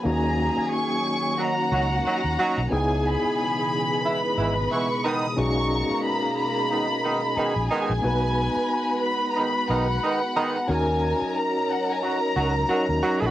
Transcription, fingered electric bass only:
X:1
M:4/4
L:1/16
Q:"Swing 16ths" 1/4=90
K:D#phr
V:1 name="Fingered electric bass" clef=bass
D,,3 z6 z C,,2 z D,, z B,,, | C,,3 z6 z G,,,2 z4 | B,,,3 z8 z2 A,,, z A,,, | B,,,3 z6 z B,,,2 z4 |
D,,3 z6 z C,,2 z D,, z A,,, |]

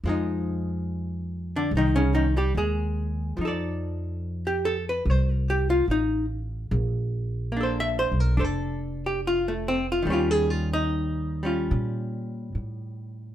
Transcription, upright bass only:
X:1
M:4/4
L:1/8
Q:"Swing" 1/4=72
K:Bbdor
V:1 name="Upright bass" clef=bass
F,,4 C,,2 E,,2 | F,,4 C,,2 =A,,,2 | B,,,3 =B,,, F,,,4 | E,,4 B,,2 =A,,2 |]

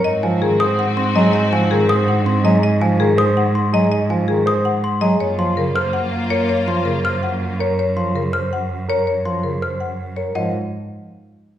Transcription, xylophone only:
X:1
M:7/8
L:1/8
Q:1/4=163
K:Abmix
V:1 name="Xylophone"
z a z e' z c' z | z a z e' z c' z | z a z e' z c' z | z a z e' z c' z |
z c' z f' z3 | z c' z f' z3 | z c' z f' z3 | z c' z f' z3 |
g z6 |]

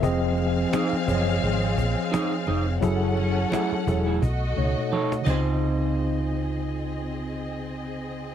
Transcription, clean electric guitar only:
X:1
M:4/4
L:1/16
Q:"Swing 16ths" 1/4=86
K:Db
V:1 name="Clean electric guitar"
z4 [EAc] z6 z [EAc] z [EAc] z | z4 [=A,_F_A] z2 [=A,F_A] z4 [E=Ad] z [E=Fc]2- | [EFc]16 |]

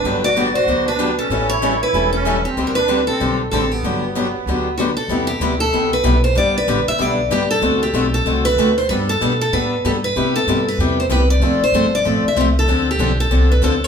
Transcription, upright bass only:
X:1
M:4/4
L:1/8
Q:"Swing" 1/4=190
K:G
V:1 name="Upright bass" clef=bass
G,,,4 D,,4 | A,,,4 E,,,4 | D,,4 B,,,2 A,,,2 | G,,,4 D,,4 |
[K:C] E,,2 D,,2 C,,2 B,,,2 | G,,,2 A,,, z B,,,2 G,,,2 | D,,2 B,,,2 C,,2 D,,2 | G,,2 B,,2 A,,2 G,,2 |
C,2 G,,2 E,,2 C,,2 | F,,, z G,,,2 A,,, z C,,2 | D,,2 B,,,2 C,,2 D,,2 |]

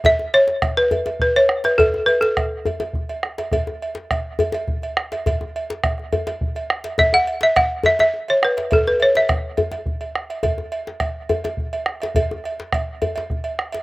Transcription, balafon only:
X:1
M:12/8
L:1/8
Q:3/8=139
K:A
V:1 name="Balafon"
e2 c3 B3 B c2 B | A2 B A8 z | z12 | z12 |
e f2 e f2 e e2 c B2 | A B c e2 z6 z | z12 | z12 |]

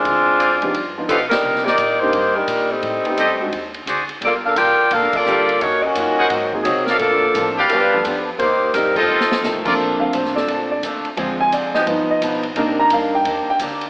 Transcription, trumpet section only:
X:1
M:4/4
L:1/8
Q:"Swing" 1/4=173
K:Bb
V:1 name="Trumpet section"
z2 [_Acdf] z3 [G=Bef] z | z [EBcd] z6 | z2 [GAce] z3 [_G_Acd] z | z6 [GAdf]2 |
z3 [_ABc_g] z3 [=ABdf] | z3 [G_cdf]3 z2 | z3 [FAce]3 z [FABd] | z8 |
z8 | z8 |]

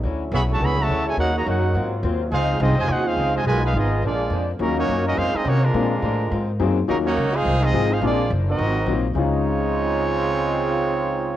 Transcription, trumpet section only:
X:1
M:4/4
L:1/8
Q:"Swing" 1/4=210
K:Db
V:1 name="Trumpet section"
z2 [A^c=e_c'] [^F^ce=a] [_Ace_c'] [F^ce=a]2 [=E=Ac_a] | [EBdg] [Gdeb] [EBdg]3 z3 | [EAcf]2 [CFAe] [Fcea] [EAcg] [EAcf]2 [Fcea] | [F_cea] [EAcf] [_CFAe]2 [B,FA=d]3 z |
[G,DEB] [B,EGd]2 [DGBe] [EAcf] [CFAe] [B,EGd] [A,=DFB]- | [A,=DFB]4- [A,DFB] z3 | [G,DEB] [B,EGd]2 [EAcf]2 [CFAe]2 [EAcf] | [B,FA=d]2 z [CGBe]4 z |
[A,EFd]8- | [A,EFd]8 |]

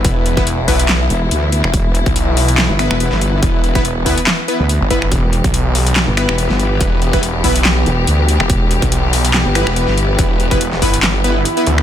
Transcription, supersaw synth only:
X:1
M:4/4
L:1/16
Q:"Swing 16ths" 1/4=142
K:Em
V:1 name="Supersaw synth"
[B,EB]3 [B,EB] z2 [B,EB] z8 z | z8 z2 [B,EB]6- | [B,EB]3 [B,EB] z2 [B,EB] z3 [B,EB] z3 [B,EB] z | z8 z2 [B,EB]6- |
[B,EB]3 [B,EB] z2 [B,EB] z8 z | z8 z2 [B,EB]6- | [B,EB]3 [B,EB] z2 [B,EB] z3 [B,EB] z2 [B,EB] z2 |]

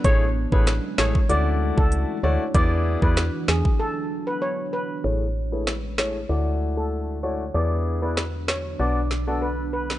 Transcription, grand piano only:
X:1
M:4/4
L:1/16
Q:1/4=96
K:A
V:1 name="Grand piano"
[A,EGc] z2 [A,EGc] z2 [A,EGc] z [A,EFd]6 [A,EFd] z | [B,EGd]3 [B,EGd] z12 | [A,EGc] z2 [A,EGc] z2 [A,EGc] z [A,EFd]6 [A,EFd] z | [B,EGd]3 [B,EGd] z4 [B,DFd] z2 [B,DFd] z4 |]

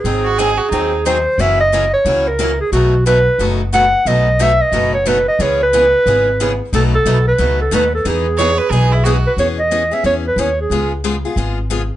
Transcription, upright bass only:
X:1
M:4/4
L:1/8
Q:"Swing" 1/4=180
K:E
V:1 name="Upright bass" clef=bass
G,,,4 D,,4 | F,,,4 C,,4 | B,,,4 F,,,4 | B,,,4 F,,,4 |
C,,4 G,,,4 | B,,,2 B,,,2 C,,2 D,,2 | E,,4 B,,,4 | E,,4 E,,2 D,,2 |
C,,4 G,,,4 |]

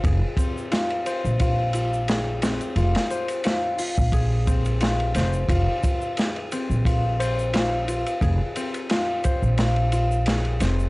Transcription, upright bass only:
X:1
M:4/4
L:1/16
Q:"Swing 16ths" 1/4=88
K:Fm
V:1 name="Upright bass" clef=bass
F,,, z6 B,,,8 z | F,,, z6 B,,,6- B,,, F,,,2 | F,,, z6 B,,,8 z | F,,, z6 B,,,6- B,,, F,,,2 |]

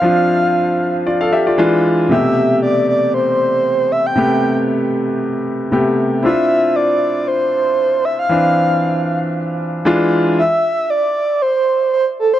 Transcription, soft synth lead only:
X:1
M:4/4
L:1/16
Q:"Swing 16ths" 1/4=116
K:Am
V:1 name="Soft synth lead"
f6- f z8 z | e4 d2 d2 c6 e g- | g3 z12 z | e4 d4 c6 e f- |
f6- f z8 z | e4 d4 c4 c2 A c |]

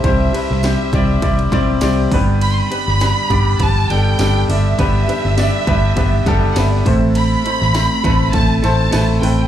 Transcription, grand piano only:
X:1
M:4/4
L:1/8
Q:"Swing 16ths" 1/4=101
K:G
V:1 name="Grand piano"
[G,CEGc] [G,CEGB] [G,CEGc] [G,CEGd] [G,CEGd] [G,CEGd] [G,CEGd] [G,B,DGB]- | [G,B,DGB] [G,B,DGB] [G,B,DGB] [G,B,DGd] [G,B,DGB] [G,B,DGA] [G,B,DGA] [G,B,DGd] | [G,B,DGB] [G,B,DGB] [G,B,DGd] [G,B,DGB] [G,B,DGB] [G,B,DGA] [G,B,DGB] [A,CEAc]- | [A,CEAc] [A,CEAc] [A,CEAc] [A,CEAB] [A,CEAc] [A,CEAc] [A,CEAB] [A,CEAB] |]
V:2 name="Grand piano" clef=bass
C,3 z4 G,,- | G,,2 z4 z G,,- | G,,2 z4 z A,,- | A,,2 z6 |]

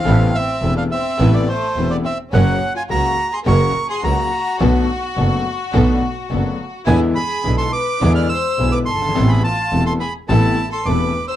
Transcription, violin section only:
X:1
M:4/4
L:1/16
Q:1/4=106
K:Ephr
V:1 name="Violin section"
C2 C3 D C3 B, A,3 B, C2 | ^C3 F ^F3 ^G ^A3 G F4- | ^F16 | E2 ^G3 A B3 d c3 B A2- |
A ^G F3 A G2 E3 A B3 c |]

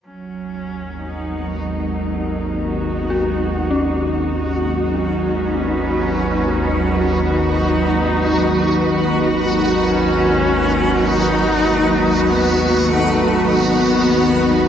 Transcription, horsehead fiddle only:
X:1
M:4/4
L:1/8
Q:1/4=49
K:G#m
V:1 name="Horsehead fiddle"
C2 B, =A, B,3 z | C4 D3 z | C2 D2 B, =A, B,2 |]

